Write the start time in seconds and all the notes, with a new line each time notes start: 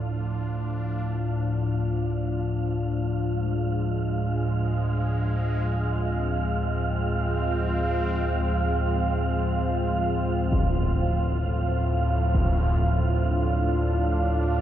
Already playing: D2 A2 F3 D4 F4 F5
3.26 G#3
5.95 C4
10.52 A2, impact
12.35 impact
13.10 D4